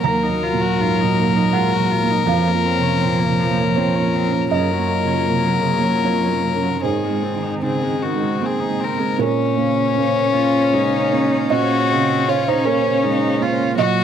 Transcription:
0.03 2.24 D#2 medium
0.03 2.24 F#3 medium
0.03 0.25 A#3 medium
0.03 4.50 A#3 medium
0.03 2.25 F#4 medium
0.03 4.48 A#4 medium
0.03 2.25 A#4 medium
0.03 1.50 A#5 loud
0.23 0.45 D#4 medium
0.29 0.70 F#3 medium
0.43 0.63 F4 medium
0.53 0.94 A#2 medium
0.61 0.82 F#4 medium
0.78 1.04 G#2 soft
0.78 1.02 F4 medium
1.00 1.43 A#2 medium
1.00 1.21 D#4 medium
1.19 1.37 A#3 medium
1.29 1.69 F#3 soft
1.36 1.55 D#4 medium
1.53 1.79 G#3 soft
1.53 1.73 F4 medium
1.53 2.24 F#5 medium
1.72 1.93 F#4 medium
1.79 2.19 F#3 medium
1.91 2.12 F4 medium
2.03 2.28 A#3 medium
2.10 2.28 D#4 medium
2.27 4.48 F2 medium
2.27 2.49 F3 medium
2.27 4.49 F3 medium
2.27 6.84 F4 medium
2.27 4.51 C#5 medium
2.27 3.73 F5 loud
2.48 2.67 A#3 medium
2.53 2.93 A#3 medium
2.65 2.85 C4 medium
2.78 3.18 C3 medium
2.83 3.03 C#4 medium
3.01 3.28 A#2 soft
3.01 3.22 C4 medium
3.20 3.41 A#3 medium
3.25 3.67 C3 medium
3.40 3.60 F3 medium
3.51 3.92 A#3 soft
3.58 3.79 A#3 medium
3.76 3.97 C4 medium
3.76 4.03 C4 soft
3.76 4.48 C#5 medium
3.96 4.17 C#4 medium
4.01 4.42 A#3 soft
4.16 4.34 C4 medium
4.27 4.52 C#4 soft
4.33 4.52 A#3 medium
4.51 6.79 F#2 medium
4.51 4.73 C#3 medium
4.51 6.79 F#3 medium
4.51 6.79 A#3 medium
4.51 6.80 A#4 medium
4.51 6.83 C#5 medium
4.51 6.00 D#5 medium
4.71 4.89 F#3 medium
4.78 5.18 A#3 soft
4.88 5.08 A#3 medium
5.02 5.42 C#3 soft
5.07 5.28 C#4 medium
5.27 5.53 C3 soft
5.27 5.46 A#3 soft
5.45 5.64 F#3 soft
5.54 5.95 C#3 soft
5.63 5.86 C#3 medium
5.79 6.20 A#3 soft
5.84 6.07 F#3 soft
6.04 6.26 A#3 medium
6.04 6.31 C4 soft
6.04 6.79 C#5 medium
6.24 6.44 C#4 soft
6.30 6.72 A#3 soft
6.43 6.65 A#3 soft
6.56 6.83 C#4 soft
6.63 6.81 F#3 soft
6.82 9.16 G#2 soft
6.82 7.04 D#3 soft
6.82 8.96 D#3 soft
6.82 9.20 C4 medium
6.82 9.20 D#4 medium
6.82 7.54 G#4 soft
6.82 8.76 C5 medium
6.82 9.19 C5 medium
7.03 7.24 G#3 soft
7.10 7.52 G#3 soft
7.22 7.44 C4 soft
7.36 7.78 D#3 soft
7.43 7.64 D#4 soft
7.62 7.89 C#3 soft
7.62 7.84 C4 soft
7.62 8.05 G#4 medium
7.83 8.05 G#3 soft
7.88 8.31 D#3 soft
8.03 8.24 D#3 soft
8.03 8.47 F#4 medium
8.15 8.57 G#3 soft
8.23 8.43 G#3 soft
8.41 8.68 A#3 soft
8.41 8.61 C4 soft
8.46 8.85 G#4 medium
8.60 8.81 D#4 soft
8.67 9.09 G#3 soft
8.80 9.01 C4 soft
8.80 9.21 A#4 medium
8.93 9.19 C4 soft
9.00 9.19 G#3 soft
9.19 11.47 A#2 medium
9.19 13.74 C#3 medium
9.19 13.74 C#4 medium
9.19 11.47 A#4 medium
9.19 13.74 C5 medium
9.19 13.75 F5 medium
9.23 11.49 C#4 medium
9.57 10.18 A#3 medium
9.96 10.31 A#3 medium
9.96 10.57 C#4 medium
10.34 10.96 A#3 medium
10.34 10.75 F4 medium
10.72 11.12 G#3 soft
10.72 11.53 D#4 medium
11.12 11.75 A#3 medium
11.50 13.74 A#2 medium
11.50 11.92 C#4 medium
11.50 12.30 F#4 loud
11.50 12.24 D#5 loud
11.90 12.51 C#3 medium
11.90 12.30 C4 medium
12.28 12.88 C#4 medium
12.28 13.05 C#4 medium
12.28 12.50 F4 medium
12.28 12.46 C#5 medium
12.48 12.67 D#4 medium
12.48 12.65 C5 loud
12.65 13.27 A#3 medium
12.65 13.41 C#4 medium
12.65 13.37 A#4 medium
13.03 13.42 G#3 medium
13.03 13.44 D#4 medium
13.41 13.78 A#3 medium
13.41 13.78 F4 medium
13.77 14.04 A#2 medium
13.77 14.04 F#3 loud
13.77 14.04 A#3 medium
13.77 14.04 F#4 loud
13.77 14.04 F#4 medium
13.77 14.04 A#4 medium
13.77 14.04 D#5 loud

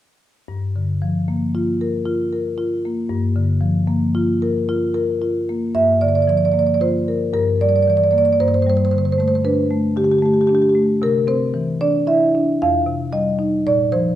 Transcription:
0.48 3.07 G2 soft
0.76 1.18 D3 soft
1.02 1.44 F3 soft
1.28 1.71 A#3 soft
1.55 1.97 F4 soft
1.81 2.23 A#4 soft
2.05 2.48 F4 soft
2.33 2.74 A#4 soft
2.58 3.00 F4 soft
2.85 3.27 A#3 soft
3.09 5.71 G2 medium
3.36 3.78 D3 soft
3.61 4.03 F3 soft
3.87 4.30 A#3 soft
4.15 4.57 F4 soft
4.42 4.84 A#4 medium
4.69 5.11 F4 soft
4.94 5.37 A#4 medium
5.22 5.65 F4 soft
5.49 5.76 A#3 soft
5.75 7.30 G2 soft
5.75 6.01 E5 medium
6.01 6.44 D3 soft
6.01 6.08 D5 medium
6.08 6.15 D5 soft
6.15 6.22 D5 soft
6.22 6.29 D5 soft
6.27 6.70 F3 soft
6.27 6.37 D5 soft
6.37 6.45 D5 soft
6.45 6.52 D5 soft
6.52 6.96 A#3 soft
6.52 6.59 D5 soft
6.59 6.66 D5 soft
6.66 6.74 D5 soft
6.74 6.78 D5 soft
6.80 7.23 F4 soft
6.80 7.32 C5 medium
7.08 7.32 A#4 soft
7.33 8.37 G2 soft
7.33 7.59 A#4 medium
7.61 8.04 G3 soft
7.61 7.69 D5 medium
7.69 7.76 D5 soft
7.76 7.83 D5 soft
7.83 7.90 D5 soft
7.88 8.30 E3 soft
7.88 7.97 D5 soft
7.97 8.04 D5 soft
8.04 8.11 D5 soft
8.11 8.39 A#3 soft
8.11 8.18 D5 soft
8.18 8.25 D5 medium
8.25 8.33 D5 soft
8.33 8.37 D5 medium
8.40 10.98 G2 soft
8.40 8.48 C5 medium
8.48 8.54 C5 soft
8.54 8.62 C5 medium
8.62 8.70 C5 medium
8.66 9.08 G3 soft
8.66 8.77 C5 medium
8.77 8.85 C5 medium
8.85 8.91 C5 medium
8.91 9.35 D3 soft
8.91 8.98 C5 soft
8.98 9.05 C5 medium
9.05 9.12 C5 soft
9.12 9.20 C5 medium
9.18 9.60 A3 soft
9.18 9.28 C5 medium
9.28 9.35 C5 medium
9.35 9.41 C5 medium
9.45 9.87 D4 soft
9.45 9.95 B4 medium
9.71 10.13 A3 soft
9.96 10.38 D3 soft
9.96 10.04 G4 medium
10.04 10.11 G4 soft
10.11 10.19 G4 soft
10.19 10.65 A3 soft
10.19 10.26 G4 soft
10.26 10.34 G4 soft
10.34 10.41 G4 soft
10.41 10.47 G4 soft
10.47 10.91 D4 soft
10.47 10.55 G4 soft
10.55 10.62 G4 soft
10.62 10.69 G4 soft
10.69 10.73 G4 soft
10.75 11.02 A3 soft
11.02 12.56 C3 soft
11.02 11.28 A#4 medium
11.27 11.70 C4 soft
11.27 11.79 C5 medium
11.54 11.96 E3 soft
11.81 12.23 D4 soft
11.81 12.06 D5 medium
12.07 12.49 E4 soft
12.07 12.58 E5 medium
12.35 12.61 D4 soft
12.62 13.63 F2 medium
12.62 13.12 F5 medium
12.86 13.29 C3 soft
13.12 13.55 G3 soft
13.12 13.63 D#5 medium
13.39 13.65 D#4 soft
13.67 14.15 A#2 medium
13.67 13.91 D5 medium
13.92 14.15 F3 soft
13.92 14.15 C5 medium

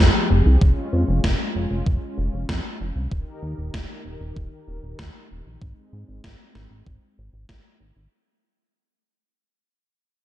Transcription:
0.00 0.11 F2 loud
0.00 0.59 F3 medium
0.00 0.59 C4 medium
0.00 0.59 G4 medium
0.00 0.59 G#4 medium
0.30 0.42 F1 medium
0.46 0.58 C2 medium
0.61 0.73 F1 loud
0.61 3.09 G#3 medium
0.61 3.09 C#4 medium
0.61 3.09 F4 medium
0.61 kick loud
0.93 1.04 F2 loud
1.08 1.20 F1 medium
1.24 1.36 F1 loud
1.24 kick loud
1.24 snare loud
1.55 1.67 F1 medium
1.71 1.83 F1 medium
1.86 1.98 F1 medium
1.86 kick loud
2.18 2.29 F1 medium
2.33 2.45 F1 medium
2.49 2.61 F2 loud
2.49 kick loud
2.49 snare loud
2.80 2.92 F1 medium
2.96 3.08 C2 medium
3.11 3.23 D#1 loud
3.11 5.59 D#3 medium
3.11 8.07 D#4 medium
3.11 5.59 G4 medium
3.11 5.59 A#4 medium
3.11 kick loud
3.43 3.54 D#2 loud
3.58 3.70 D#1 medium
3.74 3.86 D#1 loud
3.74 kick loud
3.74 snare loud
4.05 4.17 D#1 medium
4.21 4.32 D#1 medium
4.36 4.48 D#1 loud
4.36 kick loud
4.68 4.79 D#1 medium
4.83 4.95 D#1 medium
4.99 5.11 D#2 loud
4.99 kick loud
4.99 snare loud
5.30 5.42 D#1 medium
5.46 5.58 A#1 medium
5.62 5.73 G#1 loud
5.62 8.09 G#3 medium
5.62 8.09 C4 medium
5.62 kick loud
5.93 6.04 G#2 medium
6.08 6.20 G#1 medium
6.24 6.36 G#1 loud
6.24 kick loud
6.24 snare loud
6.55 6.67 G#1 medium
6.55 snare medium
6.71 6.82 G#1 medium
6.87 6.98 G#1 loud
6.87 kick loud
7.18 7.29 G#1 medium
7.33 7.45 G#1 medium
7.49 7.61 G#1 loud
7.49 kick loud
7.49 snare loud
7.80 7.92 G#1 loud
7.96 8.08 G#1 medium

